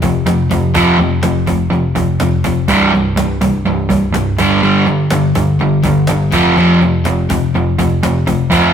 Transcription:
0.02 F1 F2 C3, cajon bass
0.25 F1 F2 C3, cajon slap
0.49 F1 F2 C3, cajon bass
0.74 F1 F2 C3 F3, cajon bass
0.98 F2 C3, cajon slap
1.22 F1 F2 C3, cajon slap
1.46 F1 F2 C3, cajon bass
1.70 F1 F2 C3, cajon slap
1.95 F1 F2 C3, cajon bass
2.19 F1 F2 C3, cajon slap
2.44 F1 F2 C3, cajon bass
2.68 C1 C2 G2 C3, cajon bass
2.93 C2 G2, cajon slap
3.16 C1 C2 G2, cajon slap
3.41 C1 C2 G2, cajon bass
3.64 C1 C2 G2, cajon slap
3.90 C1 C2 G2, cajon bass
4.11 C1 C2, cajon slap
4.16 G2
4.38 G1 G2 D3 G3, cajon bass
4.62 G1 G2 D3 G3, cajon slap
4.85 G2 D3, cajon slap
5.10 G1 G2 D3, cajon slap
5.35 G1 G2 D3, cajon bass
5.59 G1 G2 D3, cajon slap
5.82 G1 G2 D3, cajon bass
6.07 G1 G2 D3, cajon slap
6.31 F1 F2 C3 F3, cajon bass
6.54 F1 F2 C3 F3, cajon slap
6.80 F2 C3, cajon slap
7.04 F1 F2 C3, cajon slap
7.29 F1 F2 C3, cajon bass
7.54 F1 F2 C3, cajon slap
7.78 F1 F2 C3, cajon bass
8.03 F1 F2 C3, cajon slap
8.26 F1 F2 C3, cajon bass
8.51 F1 F2 C3 F3, cajon bass

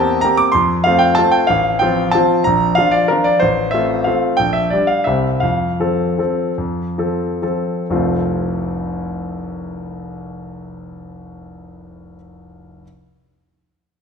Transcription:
Already playing: E2 A#3 C4 G4 G5 A5
0.21 A#3 C4 G4 A#5
0.37 D6
0.52 F2 C6
0.84 A3 C4 F4 F5
0.99 G5
1.15 A3 C4 F4 A5
1.31 G5
1.47 A1 F5
1.79 F3 C4 F4 G5
2.11 F3 C4 F4 A5
2.44 A#1 A#5
2.75 F3 D4 F4 F5
2.91 D5
3.08 F3 D4 F4 A#4
3.24 D5
3.40 A1 C5
3.71 A3 C4 F4 E5
4.04 A3 C4 F4 F5
4.37 A#1 G5
4.53 E5
4.70 G3 D4 G4 D5
4.87 F5
5.04 C2 G3 C4 G4 E5
5.40 F2 F5
5.80 F3 C4 A4
6.18 F3 C4 A4
6.58 F2
6.98 F3 C4 A4
7.42 F3 C4 A4
7.90 F1 C2 F3 A3 C4 F4

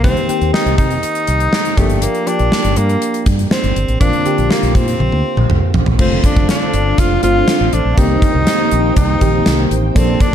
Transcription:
Already playing: D#3 A#3 C4 G4
0.03 C2 D#3 A#3 C4 G4, kick, closed hi-hat
0.17 closed hi-hat
0.28 D#3 A#3 C4 G4, closed hi-hat
0.41 D#2, closed hi-hat
0.53 D#4, snare
0.66 C2, closed hi-hat
0.78 C3 D#4, kick, closed hi-hat
0.91 closed hi-hat
1.03 closed hi-hat
1.15 closed hi-hat
1.27 C2, closed hi-hat
1.40 closed hi-hat
1.53 snare
1.65 closed hi-hat
1.77 G1 F3 A3 A#3 D4 G4, kick, closed hi-hat
1.90 closed hi-hat
2.02 A#3, closed hi-hat
2.15 closed hi-hat
2.27 F3 A#3 D4 G4, closed hi-hat
2.39 A#1, closed hi-hat
2.52 snare
2.65 G1, closed hi-hat
2.76 G2 A#3, closed hi-hat
2.89 closed hi-hat
3.02 closed hi-hat
3.14 closed hi-hat
3.26 G2, kick, closed hi-hat
3.39 closed hi-hat
3.51 C4, snare
3.64 G1, closed hi-hat
3.76 G1, closed hi-hat
3.88 A1, closed hi-hat
4.00 A#1 D3 A#3 C4 D4 F4, kick, closed hi-hat
4.13 closed hi-hat
4.25 D3 A#3 C4 G4, closed hi-hat
4.38 A#1, closed hi-hat
4.51 A#3, snare
4.63 A#1, closed hi-hat
4.75 A#2 C4, kick, closed hi-hat
4.88 closed hi-hat
5.00 A#1, high tom
5.12 D2, high tom
5.37 A#1, mid tom
5.50 C2, mid tom
5.74 A#1, floor tom
5.86 A#1, floor tom
5.99 F1 D3 A3 C4 D4 F4 A4 C5 F5, kick, crash
6.24 D4, kick, closed hi-hat
6.37 F1, kick
6.49 D4, snare, closed hi-hat
6.73 G1, closed hi-hat
6.98 F1 F4, kick, closed hi-hat
7.22 G1 D3 A3 C4 F4, closed hi-hat
7.48 snare, closed hi-hat
7.61 A1
7.73 A1 D4, closed hi-hat
7.85 A#1
7.97 C2 D#3 A#3 C4 D#4 G4 G5, kick, closed hi-hat
8.22 kick, closed hi-hat
8.35 C2
8.47 snare, closed hi-hat
8.71 A#1, closed hi-hat
8.96 C2 D#4, kick, closed hi-hat
9.21 A#1 D#3 A#3 C4 G4, kick, closed hi-hat
9.46 C2, snare, closed hi-hat
9.71 A1, closed hi-hat
9.95 A#1 F3 A#3 C4 D4 F4 A4 D5 A5, kick, closed hi-hat
10.20 D4, kick, closed hi-hat

